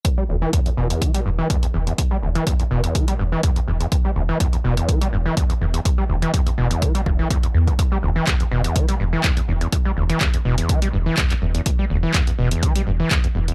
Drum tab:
HH |x---xx-xxx--xx-x|x--xxx-xxx--xx-x|x---xx-xxx--xx-x|x--xxx-xxx--xx-x|
CP |----------------|----------------|----------------|----------------|
BD |o---o---o---o---|o---o---o---o---|o---o---o---o---|o---o---o-o-o--o|

HH |x---xx-xxx--xx-x|x--xxx-xxx--xx-x|x---xx-xxx--xx-x|
CP |----x-------x---|----x-------xx--|----x-------x---|
BD |o---o---o---o---|o---o---o---o---|o---o---o---o---|